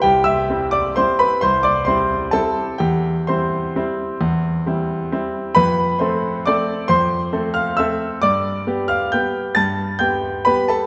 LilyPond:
\new Staff \with { instrumentName = "Grand piano" } { \time 3/4 \key c \major \tempo 4 = 132 << { <g' g''>8 <e'' e'''>4 <d'' d'''>8 <c'' c'''>8 <b' b''>8 | <c'' c'''>8 <d'' d'''>8 <c'' c'''>4 <a' a''>4 | <g' g''>4 <c'' c'''>2~ | <c'' c'''>4. r4. |
\key f \lydian <b' b''>4 <c'' c'''>4 <d'' d'''>4 | <c'' c'''>4. <f'' f'''>8 <e'' e'''>4 | <d'' d'''>4. <f'' f'''>8 <g'' g'''>4 | <a'' a'''>4 <g'' g'''>4 <b' b''>8 <a' a''>8 | } \\ { c,4 <g c' e'>4 <g c' e'>4 | c,4 <g c' e'>4 <g c' e'>4 | e,4 <g c' e'>4 <g c' e'>4 | e,4 <g c' e'>4 <g c' e'>4 |
f,4 <a c' a'>4 <a c' a'>4 | f,4 <a c' a'>4 <a c' a'>4 | g,4 <b g'>4 <b g'>4 | g,4 <b g'>4 <b g'>4 | } >> }